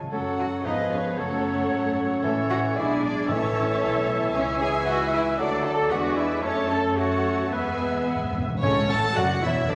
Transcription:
Already playing: flute section A5
0.03 timpani C#3
0.11 double bass section F#2, french horn section F#3 C#4, bassoon F#3, cello section A3, violin section A4 F#5, clarinet A4, viola section A4, flute section A4, oboe C#5
0.38 cello section F#4, violin section F#5, flute section F#5
0.64 double bass section G#1, french horn section F3 B3, bassoon F3, cello section D#4, viola section G#4 B4, clarinet G#4, oboe B4, violin section D#5 F5, flute section D#5
0.91 cello section C#4, violin section C#5, flute section C#5
1.16 double bass section F#1, french horn section F#3 C#4, bassoon F#3, cello section A3, violin section A4 F#5, viola section A4 C#5, flute section A4, clarinet A4, oboe C#5
1.71 double bass section G#1
2.22 double bass section A1, timpani A2, bassoon E3, french horn section E3, cello section A3, violin section A4 E5, viola section A4 C#5, flute section A4, clarinet A4, oboe C#5
2.50 cello section F#4, violin section F#5, flute section F#5
2.76 double bass section B1, bassoon G#3, french horn section G#3 D4, cello section E4, viola section G#4 D5, clarinet G#4, oboe D5, violin section E5 G#5, flute section E5
3.02 cello section D4, violin section D5, flute section D5
3.28 double bass section A1, timpani A2, bassoon E3, french horn section A3 E4, cello section C#4, clarinet A4, violin section C#5 A5, viola section C#5 E5, flute section C#5, oboe E5
3.82 double bass section B1
4.32 double bass section C#2, bassoon E3, french horn section G#3, cello section C#4, clarinet G#4, violin section C#5 G#5, viola section C#5 E5, flute section C#5, oboe E5
4.60 cello section G#4, violin section G#5, flute section G#5
4.85 cello section F#4, viola section B4, violin section F#5, flute section F#5
5.11 cello section E4, violin section E5, flute section E5
5.37 double bass section D2, bassoon F#3, french horn section A3 F#4, cello section D4, clarinet A4, viola section A4 D5, flute section D5, violin section D5 F#5, oboe D5
5.63 cello section A4, violin section A5, flute section A5
5.90 double bass section E2, french horn section G#3 D4, bassoon G#3, cello section F#4, viola section G#4 D5, clarinet B4, oboe D5, violin section E5 F#5, flute section F#5
6.16 cello section E4, violin section E5, flute section E5
6.42 double bass section F#2, french horn section A3 C#4, bassoon A3, cello section C#4, clarinet A4, viola section A4 C#5, violin section C#5 A5, oboe C#5, flute section C#5
6.69 cello section A4, violin section A5, flute section A5
6.96 bassoon A3, cello section F#4, clarinet A4, viola section A4 C#5, oboe C#5, violin section F#5 A5, flute section F#5
7.52 timpani E2, double bass section E2, french horn section G#3 B3, cello section B3, bassoon B3, clarinet G#4, oboe B4, violin section B4 G#5, viola section B4 E5, flute section B4
7.60 timpani E2
7.68 timpani E2
7.76 timpani E2
7.84 timpani E2
7.92 timpani E2
8.00 timpani E2
8.07 timpani E2, oboe F#5
8.15 timpani E2
8.23 timpani E2
8.31 timpani E2
8.36 timpani E2, oboe E5
8.46 timpani E2
8.54 timpani E2
8.62 double bass section C#2, cello section C#2, timpani A2, french horn section C#3, viola section C#4, clarinet C#4, flute section A4, violin section C#5, oboe C#5
8.88 double bass section A1, cello section A2, french horn section A3, clarinet A4, viola section A4, flute section F#5, violin section A5, oboe A5
9.15 double bass section F#1, cello section F#2, french horn section F#3, viola section F#4, clarinet F#4, flute section D5, oboe F#5, violin section F#5
9.42 double bass section E1, cello section E2, french horn section E3, viola section E4, clarinet E4, flute section C#5, oboe E5, violin section E5
9.68 double bass section D2, cello section D2, french horn section D3, viola section D4, clarinet D4, flute section B4, violin section D5, oboe D5

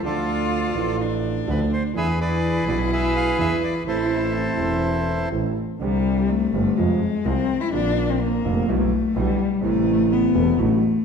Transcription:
0.03 double bass D2, grand piano D2 D3 F3 A3 D4 A4, cello F4, bandoneon F4 A4 D5
0.74 grand piano A1 A2 F3 A3 D4, double bass A1
0.78 grand piano A4
1.01 cello D4
1.47 double bass D2, grand piano D2 D3 F3 A3 D4 A4, bandoneon B4
1.73 bandoneon C5
1.94 grand piano E2 E3 B3 D4 G#4, double bass E2, cello E4, bandoneon G#4 B4 E5
2.21 bandoneon G#4 B4 D5
2.66 double bass B1, grand piano B1 B2 E3 B3 D4 G#4, bandoneon D5
2.92 bandoneon G#4 B4 E5
3.16 bandoneon F5
3.38 grand piano E2 E3 B3 D4 G#4, double bass E2, bandoneon E5
3.64 bandoneon D5
3.85 double bass A1, grand piano A1 A2 E3 A3 C4, cello E4, bandoneon E4 A4 C5
3.89 grand piano A4
4.35 cello C4
4.57 double bass E1, grand piano E1 E2 E3 A3 C4 A4
5.32 double bass A1, grand piano A1 A2 E3 A3 C4 A4
5.80 double bass C2, grand piano C2 C3 D3 G3 C4 G4, cello G3
6.29 cello A3
6.53 double bass G1, grand piano G1 G2 D3 G3 C4 G4
6.77 double bass F2, grand piano F2 C3 F3 G#3 F4, cello G#3
7.25 double bass C2, grand piano C2 C3 F3 G#3 F4, cello C4
7.61 cello E4
7.71 double bass A#1, grand piano A#1 A#2 D3 F3 A#3, cello D4
7.75 grand piano F4
8.09 cello C4
8.21 cello A#3
8.44 double bass F1, grand piano F1 F2 D3 F3 A#3 F4
8.68 double bass B1, grand piano B1 B2 D3 G3 B3 E4, cello A3
9.15 double bass B1, grand piano B1 B2 D3 G3 B3 E4, cello G3
9.61 double bass A1, grand piano A1 A2 C3 E3 A3 E4, cello A3
10.12 cello B3
10.34 double bass E1, grand piano E1 E2 C3 E3 A3 E4
10.57 double bass A1, grand piano A1 A2 D3 F#3 A3 F#4, cello A3

